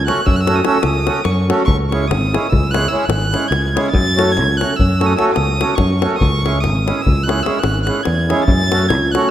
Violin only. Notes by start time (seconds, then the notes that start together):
0.07 F#6
0.26 E6
0.36 F#6
0.40 E6
0.56 D#6
0.66 E6
0.83 D#6
1.24 C#6
1.65 C#6
1.89 C#6
2.08 D#6
2.50 E6
2.71 F#6
2.88 E6
3.06 F#6
3.48 G#6
3.90 A6
4.32 G#6
4.57 F#6
4.76 E6
5.06 D#6
5.17 E6
5.32 D#6
5.75 C#6
6.16 C#6 D#6
6.61 D#6
7.02 E6
7.23 F#6
7.43 E6
7.59 F#6
7.83 F#6
8.03 G#6
8.44 A6
8.88 G#6
9.11 F#6